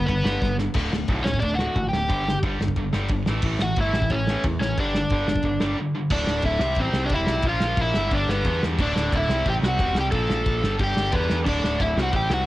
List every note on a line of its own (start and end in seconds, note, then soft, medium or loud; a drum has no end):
0.07 0.21 G1 medium
0.07 0.23 G2 medium
0.07 0.24 D3 medium
0.07 0.56 B3 medium
0.07 0.55 B4 medium
0.07 kick medium
0.07 ride medium
0.24 0.38 G1 medium
0.24 0.41 G2 medium
0.24 0.42 D3 medium
0.24 0.42 G3 medium
0.24 snare loud
0.42 0.67 G1 loud
0.42 0.58 G2 medium
0.42 0.58 D3 medium
0.42 kick loud
0.42 snare medium
0.59 0.75 G2 medium
0.59 0.75 D3 medium
0.59 snare medium
0.74 0.88 D1 loud
0.74 0.91 D2 medium
0.74 0.92 A2 loud
0.74 0.92 D3 medium
0.74 kick loud
0.74 crash loud
0.91 1.04 D1 medium
0.91 1.08 D2 medium
0.91 1.08 A2 medium
0.91 snare loud
1.08 1.21 B1 loud
1.08 1.24 D2 medium
1.08 1.25 A2 medium
1.08 1.26 D3 medium
1.08 kick loud
1.08 ride medium
1.24 1.38 D1 medium
1.24 1.41 D2 medium
1.24 1.41 A2 medium
1.24 1.41 C#4 medium
1.24 1.40 C#5 medium
1.24 snare loud
1.34 kick medium
1.40 1.68 D1 medium
1.40 1.58 D2 medium
1.40 1.59 A2 medium
1.40 1.58 D4 medium
1.40 1.55 D5 medium
1.40 kick medium
1.40 ride medium
1.55 1.91 F#4 medium
1.55 1.88 F#5 medium
1.55 snare loud
1.60 1.75 D2 loud
1.60 1.75 A2 medium
1.60 1.76 D3 loud
1.76 1.89 A1 loud
1.76 1.91 D2 medium
1.76 1.92 A2 medium
1.76 kick loud
1.76 ride medium
1.89 2.10 D1 medium
1.89 2.38 G5 loud
1.93 2.08 D2 medium
1.93 2.08 A2 medium
1.93 2.40 G4 medium
1.93 snare medium
2.08 2.35 G1 medium
2.08 2.25 G2 loud
2.08 2.25 D3 loud
2.08 2.26 G3 loud
2.08 kick loud
2.08 ride medium
2.26 2.42 G2 medium
2.26 2.42 D3 medium
2.26 snare loud
2.43 2.56 G1 loud
2.43 2.59 G2 medium
2.43 2.59 D3 loud
2.43 2.60 G3 loud
2.43 kick loud
2.43 ride medium
2.60 2.73 G1 medium
2.60 2.75 G2 medium
2.60 2.76 D3 medium
2.60 snare loud
2.68 kick medium
2.76 2.89 G1 medium
2.76 2.92 G2 medium
2.76 2.93 D3 medium
2.76 kick loud
2.76 ride medium
2.93 3.06 G1 medium
2.93 3.09 G2 medium
2.93 3.09 D3 medium
2.93 3.10 G3 loud
2.93 snare loud
3.08 3.23 G1 loud
3.08 3.26 G2 medium
3.08 3.26 D3 medium
3.08 kick loud
3.08 ride medium
3.26 3.39 A1 medium
3.26 3.43 A2 medium
3.26 3.43 E3 loud
3.26 3.44 A3 loud
3.26 snare loud
3.42 3.56 A1 medium
3.42 3.59 A2 medium
3.42 3.60 E3 loud
3.42 3.60 A3 loud
3.42 kick loud
3.42 crash loud
3.59 3.73 A1 medium
3.59 3.76 A2 medium
3.59 3.76 E3 medium
3.59 3.79 F#5 loud
3.59 snare loud
3.64 3.78 F#4 medium
3.76 3.90 G1 medium
3.76 3.93 A2 medium
3.76 3.94 E3 medium
3.76 3.94 A3 loud
3.76 kick loud
3.76 ride medium
3.81 4.11 E4 medium
3.81 4.14 E5 medium
3.93 4.06 A1 loud
3.93 4.10 A2 medium
3.93 4.10 E3 medium
3.93 snare loud
4.02 kick medium
4.10 4.35 A1 medium
4.10 4.27 A2 medium
4.10 4.27 E3 medium
4.10 4.43 C#4 medium
4.10 4.42 C#5 loud
4.10 kick medium
4.10 ride medium
4.27 4.44 A2 medium
4.27 4.45 E3 medium
4.27 4.45 A3 loud
4.27 snare loud
4.43 4.57 E2 loud
4.43 4.60 A2 medium
4.43 4.60 E3 medium
4.43 kick loud
4.43 ride medium
4.60 4.73 A1 medium
4.60 4.77 A2 medium
4.60 4.77 E3 loud
4.60 4.77 C#4 medium
4.60 4.78 C#5 medium
4.60 snare medium
4.78 5.03 G1 medium
4.78 4.94 G2 loud
4.78 4.95 D3 loud
4.78 4.95 G3 loud
4.78 5.75 D4 medium
4.78 5.75 D5 medium
4.78 kick loud
4.78 ride medium
4.94 5.10 G2 medium
4.94 5.11 D3 medium
4.94 snare loud
5.10 5.24 G1 loud
5.10 5.28 G2 loud
5.10 5.28 D3 loud
5.10 5.28 G3 loud
5.10 kick loud
5.10 ride medium
5.27 5.40 G1 medium
5.27 5.43 G2 medium
5.27 5.43 D3 medium
5.27 snare loud
5.36 kick loud
5.43 5.57 G1 medium
5.43 5.59 G2 medium
5.43 5.60 D3 loud
5.43 kick medium
5.43 ride medium
5.60 5.74 G1 medium
5.60 5.77 G2 medium
5.60 5.77 D3 medium
5.60 5.78 G3 loud
5.60 snare loud
5.78 5.93 G2 medium
5.78 5.94 D3 medium
5.95 6.10 G2 medium
5.95 6.10 D3 medium
6.10 6.25 D1 loud
6.10 6.60 D2 loud
6.10 6.61 A2 loud
6.10 6.62 D3 loud
6.10 6.43 D4 medium
6.10 6.45 D5 medium
6.10 kick loud
6.10 crash loud
6.27 6.42 D1 medium
6.27 snare loud
6.42 6.58 D1 medium
6.42 6.80 E5 medium
6.42 kick loud
6.42 ride medium
6.46 6.77 E4 medium
6.59 6.75 C2 loud
6.59 7.10 C3 medium
6.59 7.11 G3 loud
6.59 snare loud
6.64 7.12 C4 loud
6.75 6.92 A1 medium
6.75 kick loud
6.75 ride medium
6.80 7.03 C4 medium
6.80 7.06 C5 medium
6.92 7.08 C2 medium
6.92 snare loud
7.05 7.12 D4 medium
7.05 7.15 D5 medium
7.09 7.25 E1 loud
7.09 7.44 C3 medium
7.09 7.45 G3 medium
7.09 kick loud
7.09 ride medium
7.14 7.45 C4 medium
7.14 7.44 E4 medium
7.14 7.48 E5 loud
7.26 7.42 B1 medium
7.26 snare loud
7.42 7.59 A#1 medium
7.42 7.94 A#2 loud
7.42 kick loud
7.42 ride medium
7.47 7.95 F3 loud
7.47 7.96 A#3 loud
7.47 7.77 F4 medium
7.47 7.82 F5 medium
7.60 7.75 A#1 medium
7.60 snare loud
7.77 7.92 A#1 loud
7.77 8.11 E4 medium
7.77 kick loud
7.77 ride medium
7.83 8.15 E5 medium
7.94 8.09 G1 medium
7.94 8.44 G2 medium
7.94 8.45 D3 loud
7.94 8.46 G3 loud
7.94 snare loud
8.11 8.26 G1 medium
8.11 8.28 D4 medium
8.11 8.31 D5 loud
8.11 kick loud
8.11 ride medium
8.27 8.42 G1 medium
8.27 8.60 B3 medium
8.27 8.61 B4 medium
8.27 snare loud
8.45 8.60 E2 loud
8.45 8.78 G2 medium
8.45 8.79 D3 medium
8.45 8.80 G3 medium
8.45 kick loud
8.45 ride medium
8.63 8.77 E2 medium
8.63 snare loud
8.78 8.93 D1 loud
8.78 9.28 D2 medium
8.78 9.29 A2 loud
8.78 9.29 D3 loud
8.78 9.11 D4 medium
8.78 9.15 D5 loud
8.78 kick loud
8.78 crash loud
8.95 9.10 D1 medium
8.95 snare loud
9.12 9.26 D1 loud
9.12 9.45 E4 medium
9.12 kick loud
9.12 ride medium
9.18 9.49 E5 loud
9.28 9.42 C2 medium
9.28 9.78 C3 loud
9.28 9.79 G3 loud
9.28 9.79 C4 loud
9.28 snare loud
9.45 9.60 A1 medium
9.45 9.53 G4 medium
9.45 kick loud
9.45 ride medium
9.50 9.55 G5 loud
9.62 9.77 C2 medium
9.62 9.95 F#4 medium
9.62 snare loud
9.68 10.00 F#5 loud
9.79 9.93 E1 loud
9.79 10.12 C3 medium
9.79 10.13 G3 medium
9.79 10.13 C4 medium
9.79 kick loud
9.79 ride medium
9.95 10.09 C2 medium
9.95 10.03 G4 medium
9.95 snare loud
10.01 10.06 G5 loud
10.11 10.27 A#1 loud
10.11 10.62 A#2 loud
10.11 10.63 F3 loud
10.11 10.63 A#3 loud
10.11 10.75 A4 medium
10.11 10.82 A5 loud
10.11 kick loud
10.11 ride medium
10.29 10.43 A#1 medium
10.29 snare loud
10.46 10.61 A#1 medium
10.46 kick loud
10.46 ride medium
10.62 10.78 G1 medium
10.62 11.10 G2 medium
10.62 11.12 D3 loud
10.62 11.13 G3 loud
10.62 snare loud
10.79 10.94 G1 medium
10.79 11.11 G4 medium
10.79 kick loud
10.79 ride medium
10.84 11.13 G5 loud
10.97 11.11 G1 medium
10.97 snare loud
11.11 11.27 E2 medium
11.11 11.44 G2 medium
11.11 11.45 D3 medium
11.11 11.46 G3 medium
11.11 11.36 B3 medium
11.11 kick loud
11.11 ride medium
11.16 11.38 B4 loud
11.30 11.45 E2 medium
11.30 snare loud
11.45 11.61 D1 medium
11.45 11.95 D2 medium
11.45 11.96 A2 loud
11.45 11.96 D3 loud
11.45 11.77 D4 medium
11.45 11.79 D5 medium
11.45 kick loud
11.45 crash loud
11.63 11.77 D1 medium
11.63 snare loud
11.80 11.94 D1 loud
11.80 11.96 E4 medium
11.80 11.99 E5 medium
11.80 kick loud
11.80 ride medium
11.96 12.10 C2 loud
11.96 12.45 C3 medium
11.96 12.46 G3 medium
11.96 12.46 C4 loud
11.96 12.12 F#4 medium
11.96 snare loud
12.03 12.16 F#5 medium
12.12 12.27 A1 loud
12.12 12.28 G4 medium
12.12 kick loud
12.12 ride medium
12.16 12.32 G5 loud
12.29 12.44 C2 medium
12.29 12.46 F#4 medium
12.29 snare loud
12.34 12.46 F#5 loud